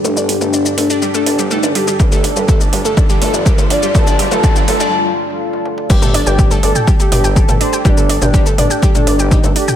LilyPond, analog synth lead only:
\new Staff \with { instrumentName = "Analog synth lead" } { \time 4/4 \key c \dorian \tempo 4 = 123 d'8 r16 d'8 r16 d'8 r16 d'8 r16 ees'16 r16 g'16 r16 | a'8 r16 a'8 r16 a'8 r16 a'8 r16 bes'16 r16 d''16 r16 | a'8 r16 a'8 r16 a'8 r2 | g'8 r16 g'8 r16 a'8 r16 g'8 r16 a'16 r16 c''16 r16 |
d'8 r16 d'8 r16 d'8 r16 d'8 r16 ees'16 r16 g'16 r16 | }